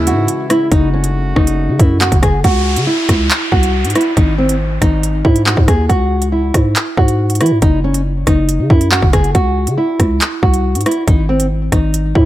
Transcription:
0.00 0.14 D#2 loud
0.00 0.70 C#3 medium
0.00 0.70 E3 medium
0.00 2.41 G#3 medium
0.00 0.70 E4 medium
0.07 0.48 F#4 medium
0.07 closed hi-hat medium
0.12 0.28 G#2 loud
0.28 closed hi-hat medium
0.50 0.67 E4 medium
0.50 cross-stick loud
0.50 closed hi-hat medium
0.72 1.34 F#1 loud
0.72 2.43 C#3 medium
0.72 2.43 A3 medium
0.72 0.88 D#4 loud
0.72 2.43 F#4 medium
0.72 kick loud
0.72 closed hi-hat medium
0.93 1.10 C#4 medium
1.04 closed hi-hat medium
1.36 1.70 F#1 loud
1.36 1.77 D#4 medium
1.36 kick loud
1.36 cross-stick medium
1.47 closed hi-hat medium
1.69 1.79 C#3 loud
1.80 2.11 F#2 loud
1.80 1.96 E4 medium
1.80 kick loud
1.80 closed hi-hat medium
2.01 2.18 F#4 medium
2.01 clap loud
2.01 closed hi-hat medium
2.12 2.22 F#1 loud
2.12 kick loud
2.12 closed hi-hat medium
2.22 2.43 F#1 loud
2.22 2.39 G#4 medium
2.22 kick loud
2.22 cross-stick loud
2.22 closed hi-hat medium
2.44 2.78 C#2 loud
2.44 2.85 F#4 loud
2.44 kick loud
2.44 closed hi-hat medium
2.44 downlifter medium
2.76 2.87 C#3 loud
2.76 closed hi-hat medium
2.87 3.28 E4 medium
3.09 3.30 C#2 loud
3.09 kick medium
3.09 cross-stick medium
3.09 closed hi-hat medium
3.31 clap loud
3.31 closed hi-hat medium
3.52 3.86 C2 loud
3.52 3.93 F#4 medium
3.52 kick loud
3.63 closed hi-hat medium
3.85 3.95 G#2 medium
3.85 closed hi-hat medium
3.90 closed hi-hat medium
3.95 4.12 E4 medium
3.95 cross-stick loud
3.95 closed hi-hat medium
4.01 closed hi-hat medium
4.17 4.79 G#1 loud
4.17 4.34 D#4 loud
4.17 kick loud
4.17 closed hi-hat medium
4.38 4.55 C4 medium
4.49 closed hi-hat medium
4.82 5.23 G#1 loud
4.82 5.22 D#4 medium
4.82 kick medium
4.82 cross-stick medium
4.82 closed hi-hat medium
5.03 closed hi-hat medium
5.25 5.56 G#2 loud
5.25 5.41 E4 medium
5.25 kick loud
5.36 closed hi-hat medium
5.46 5.63 F#4 medium
5.46 clap loud
5.57 5.68 G#2 loud
5.57 kick loud
5.68 5.89 D#2 loud
5.68 5.85 G#4 medium
5.68 kick loud
5.68 cross-stick loud
5.68 closed hi-hat medium
5.89 6.52 C#2 loud
5.89 6.30 F#4 loud
5.89 kick loud
5.89 closed hi-hat medium
6.22 closed hi-hat medium
6.32 6.73 E4 medium
6.54 6.75 G#2 loud
6.54 kick loud
6.54 cross-stick medium
6.54 closed hi-hat medium
6.76 clap loud
6.76 closed hi-hat medium
6.97 7.42 G#2 loud
6.97 7.38 F#4 medium
6.97 kick loud
7.08 closed hi-hat medium
7.30 closed hi-hat medium
7.35 closed hi-hat medium
7.41 7.53 E3 medium
7.41 7.58 E4 medium
7.41 cross-stick loud
7.41 closed hi-hat medium
7.46 closed hi-hat medium
7.51 7.62 G#2 loud
7.62 8.24 F#1 loud
7.62 7.79 D#4 loud
7.62 kick loud
7.62 closed hi-hat medium
7.84 8.01 C#4 medium
7.94 closed hi-hat medium
8.27 8.61 F#1 loud
8.27 8.67 D#4 medium
8.27 kick medium
8.27 cross-stick medium
8.27 closed hi-hat medium
8.49 closed hi-hat medium
8.59 8.70 C#3 loud
8.70 9.01 F#2 loud
8.70 8.87 E4 medium
8.70 kick loud
8.81 closed hi-hat medium
8.92 9.08 F#4 medium
8.92 clap loud
9.02 9.13 F#1 loud
9.02 kick loud
9.13 9.34 F#1 loud
9.13 9.30 G#4 medium
9.13 kick loud
9.13 cross-stick loud
9.13 closed hi-hat medium
9.24 closed hi-hat soft
9.35 9.69 C#2 loud
9.35 9.76 F#4 loud
9.35 kick loud
9.35 closed hi-hat medium
9.67 9.78 C#3 loud
9.67 closed hi-hat medium
9.78 10.18 E4 medium
10.00 10.20 C#2 loud
10.00 kick medium
10.00 cross-stick medium
10.00 closed hi-hat medium
10.21 clap loud
10.21 closed hi-hat medium
10.43 10.77 C2 loud
10.43 10.83 F#4 medium
10.43 kick loud
10.54 closed hi-hat medium
10.75 10.85 G#2 loud
10.75 closed hi-hat medium
10.81 closed hi-hat medium
10.86 11.03 E4 medium
10.86 cross-stick loud
10.86 closed hi-hat medium
10.91 closed hi-hat medium
11.08 11.70 G#1 loud
11.08 11.24 D#4 loud
11.08 kick loud
11.08 closed hi-hat medium
11.29 11.46 C4 medium
11.40 closed hi-hat medium
11.72 12.14 G#1 loud
11.72 12.13 D#4 medium
11.72 kick medium
11.72 cross-stick medium
11.72 closed hi-hat medium
11.94 closed hi-hat medium
12.15 12.25 G#2 loud
12.15 12.25 E4 medium
12.15 kick loud

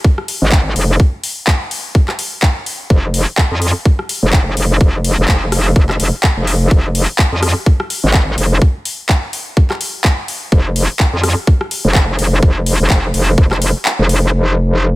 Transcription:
0.04 kick loud
0.18 cross-stick medium
0.28 open hi-hat loud
0.42 0.74 G#1 medium
0.52 kick loud
0.52 clap loud
0.76 0.98 F1 medium
0.76 open hi-hat medium
1.00 kick loud
1.24 open hi-hat loud
1.47 kick loud
1.47 clap loud
1.71 open hi-hat medium
1.95 kick loud
2.08 cross-stick medium
2.08 clap soft
2.19 open hi-hat loud
2.43 kick loud
2.43 clap loud
2.66 open hi-hat medium
2.90 3.25 F1 medium
2.90 kick loud
3.14 open hi-hat loud
3.38 kick loud
3.38 clap loud
3.51 3.73 F2 medium
3.62 open hi-hat medium
3.85 kick loud
3.99 cross-stick medium
4.09 open hi-hat loud
4.23 4.55 F1 medium
4.33 kick loud
4.33 clap loud
4.57 4.79 F1 medium
4.57 open hi-hat medium
4.81 5.16 F1 medium
4.81 kick loud
5.04 open hi-hat loud
5.18 5.27 F1 medium
5.28 5.74 F1 medium
5.28 kick loud
5.28 clap loud
5.52 cross-stick medium
5.52 open hi-hat loud
5.76 5.98 F1 loud
5.76 kick loud
5.89 cross-stick medium
5.89 clap soft
6.00 6.11 F1 medium
6.00 open hi-hat loud
6.23 kick loud
6.23 clap loud
6.37 6.70 F1 medium
6.47 open hi-hat medium
6.71 7.06 F1 medium
6.71 kick loud
6.95 open hi-hat loud
7.19 kick loud
7.19 clap loud
7.32 7.54 F2 loud
7.43 cross-stick medium
7.43 open hi-hat medium
7.66 kick loud
7.80 cross-stick medium
7.90 open hi-hat loud
8.04 8.36 G#1 medium
8.14 kick loud
8.14 clap loud
8.38 8.60 F1 loud
8.38 open hi-hat medium
8.62 kick loud
8.85 open hi-hat loud
9.09 kick loud
9.09 clap loud
9.33 open hi-hat medium
9.57 kick loud
9.70 cross-stick medium
9.70 clap soft
9.81 open hi-hat loud
10.04 kick loud
10.04 clap loud
10.28 open hi-hat medium
10.52 10.87 F1 medium
10.52 kick loud
10.76 open hi-hat medium
11.00 kick loud
11.00 clap loud
11.13 11.35 F2 medium
11.23 cross-stick medium
11.23 open hi-hat medium
11.47 kick loud
11.61 cross-stick medium
11.71 open hi-hat loud
11.85 12.17 F1 medium
11.95 kick loud
11.95 clap loud
12.19 12.41 F1 medium
12.19 open hi-hat medium
12.43 12.78 F1 medium
12.43 kick loud
12.66 open hi-hat medium
12.80 12.89 F1 loud
12.90 13.12 F1 loud
12.90 kick loud
12.90 clap loud
13.14 13.36 F1 loud
13.14 open hi-hat medium
13.38 13.73 F1 loud
13.38 kick loud
13.51 cross-stick medium
13.51 clap soft
13.62 open hi-hat loud
13.85 clap loud
13.99 14.31 F1 loud
14.09 open hi-hat medium
14.33 14.96 F1 medium
14.71 tambourine soft

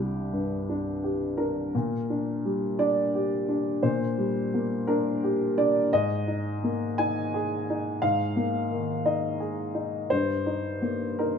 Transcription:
0.00 1.69 C2 soft
0.00 0.55 G3 soft
0.00 0.69 D4 soft
0.00 1.02 G4 medium
0.33 0.89 G2 soft
0.69 1.25 D4 soft
1.04 1.59 G4 soft
1.37 1.73 D4 soft
1.37 2.77 A#4 medium
1.75 3.78 A#2 soft
2.10 2.65 D4 soft
2.45 2.99 G3 soft
2.79 3.33 D4 soft
2.79 3.82 D5 medium
3.15 3.69 G4 soft
3.48 4.03 D4 soft
3.83 5.85 A#2 soft
3.83 4.86 C5 medium
4.18 4.73 G3 soft
4.54 5.08 A#3 soft
4.87 5.41 D4 soft
4.87 5.55 A#4 medium
5.23 5.76 G4 soft
5.58 5.90 D4 soft
5.58 5.90 D5 medium
5.93 8.00 G#2 soft
5.93 7.00 D#5 medium
6.28 6.85 D#4 soft
6.64 7.21 A#3 soft
6.98 7.55 D#4 soft
6.98 8.02 G#5 medium
7.34 7.88 G#4 soft
7.70 8.23 D#4 soft
8.02 10.06 G#2 soft
8.02 9.04 F5 medium
8.36 8.91 A#3 soft
8.71 9.26 D#3 soft
9.05 9.61 D#4 soft
9.05 9.75 D#5 soft
9.40 9.96 G#4 soft
9.74 10.10 D#4 soft
10.10 11.38 G2 soft
10.10 11.19 C5 medium
10.46 11.04 D#4 soft
10.82 11.38 A#3 soft
11.19 11.38 D#4 soft
11.19 11.38 A#4 medium

